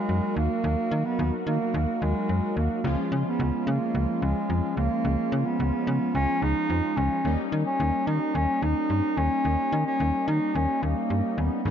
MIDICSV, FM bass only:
0, 0, Header, 1, 2, 480
1, 0, Start_track
1, 0, Tempo, 550459
1, 559, Time_signature, 4, 2, 24, 8
1, 10207, End_track
2, 0, Start_track
2, 0, Title_t, "FM bass"
2, 0, Program_c, 0, 39
2, 78, Note_on_c, 0, 42, 84
2, 179, Note_off_c, 0, 42, 0
2, 318, Note_on_c, 0, 39, 92
2, 419, Note_off_c, 0, 39, 0
2, 557, Note_on_c, 0, 39, 104
2, 659, Note_off_c, 0, 39, 0
2, 797, Note_on_c, 0, 51, 103
2, 899, Note_off_c, 0, 51, 0
2, 1037, Note_on_c, 0, 39, 112
2, 1139, Note_off_c, 0, 39, 0
2, 1278, Note_on_c, 0, 51, 102
2, 1380, Note_off_c, 0, 51, 0
2, 1518, Note_on_c, 0, 39, 108
2, 1620, Note_off_c, 0, 39, 0
2, 1760, Note_on_c, 0, 39, 102
2, 1861, Note_off_c, 0, 39, 0
2, 1999, Note_on_c, 0, 42, 88
2, 2100, Note_off_c, 0, 42, 0
2, 2238, Note_on_c, 0, 39, 89
2, 2339, Note_off_c, 0, 39, 0
2, 2478, Note_on_c, 0, 37, 114
2, 2580, Note_off_c, 0, 37, 0
2, 2719, Note_on_c, 0, 49, 102
2, 2820, Note_off_c, 0, 49, 0
2, 2960, Note_on_c, 0, 37, 113
2, 3060, Note_off_c, 0, 37, 0
2, 3200, Note_on_c, 0, 49, 109
2, 3300, Note_off_c, 0, 49, 0
2, 3440, Note_on_c, 0, 37, 104
2, 3541, Note_off_c, 0, 37, 0
2, 3681, Note_on_c, 0, 37, 99
2, 3781, Note_off_c, 0, 37, 0
2, 3920, Note_on_c, 0, 41, 97
2, 4021, Note_off_c, 0, 41, 0
2, 4160, Note_on_c, 0, 37, 96
2, 4261, Note_off_c, 0, 37, 0
2, 4400, Note_on_c, 0, 37, 101
2, 4501, Note_off_c, 0, 37, 0
2, 4640, Note_on_c, 0, 49, 103
2, 4741, Note_off_c, 0, 49, 0
2, 4880, Note_on_c, 0, 37, 106
2, 4981, Note_off_c, 0, 37, 0
2, 5120, Note_on_c, 0, 49, 106
2, 5221, Note_off_c, 0, 49, 0
2, 5360, Note_on_c, 0, 37, 103
2, 5461, Note_off_c, 0, 37, 0
2, 5599, Note_on_c, 0, 37, 93
2, 5700, Note_off_c, 0, 37, 0
2, 5839, Note_on_c, 0, 41, 95
2, 5940, Note_off_c, 0, 41, 0
2, 6079, Note_on_c, 0, 37, 101
2, 6180, Note_off_c, 0, 37, 0
2, 6320, Note_on_c, 0, 39, 101
2, 6421, Note_off_c, 0, 39, 0
2, 6560, Note_on_c, 0, 51, 101
2, 6660, Note_off_c, 0, 51, 0
2, 6799, Note_on_c, 0, 39, 108
2, 6900, Note_off_c, 0, 39, 0
2, 7039, Note_on_c, 0, 51, 95
2, 7140, Note_off_c, 0, 51, 0
2, 7280, Note_on_c, 0, 39, 105
2, 7381, Note_off_c, 0, 39, 0
2, 7520, Note_on_c, 0, 39, 100
2, 7620, Note_off_c, 0, 39, 0
2, 7759, Note_on_c, 0, 43, 87
2, 7860, Note_off_c, 0, 43, 0
2, 7999, Note_on_c, 0, 39, 97
2, 8100, Note_off_c, 0, 39, 0
2, 8239, Note_on_c, 0, 39, 97
2, 8340, Note_off_c, 0, 39, 0
2, 8479, Note_on_c, 0, 51, 104
2, 8580, Note_off_c, 0, 51, 0
2, 8720, Note_on_c, 0, 39, 103
2, 8820, Note_off_c, 0, 39, 0
2, 8960, Note_on_c, 0, 51, 106
2, 9061, Note_off_c, 0, 51, 0
2, 9201, Note_on_c, 0, 39, 105
2, 9301, Note_off_c, 0, 39, 0
2, 9440, Note_on_c, 0, 39, 97
2, 9541, Note_off_c, 0, 39, 0
2, 9681, Note_on_c, 0, 43, 91
2, 9781, Note_off_c, 0, 43, 0
2, 9921, Note_on_c, 0, 39, 98
2, 10021, Note_off_c, 0, 39, 0
2, 10161, Note_on_c, 0, 32, 110
2, 10207, Note_off_c, 0, 32, 0
2, 10207, End_track
0, 0, End_of_file